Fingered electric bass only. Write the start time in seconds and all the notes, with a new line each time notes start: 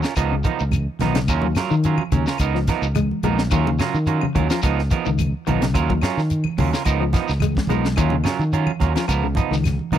0.16 C#2
0.61 C#2
1.02 B1
1.28 D#2
1.71 D#3
2.12 D#2
2.40 C#2
2.82 C#2
3.23 A#1
3.51 D#2
3.94 D#3
4.35 D#2
4.64 C#2
5.07 C#2
5.48 B1
5.75 D#2
6.17 D#3
6.59 D#2
6.86 C#2
7.29 C#2
7.69 B1
7.98 D#2
8.39 D#3
8.81 D#2
9.09 C#2
9.51 C#2
9.92 B1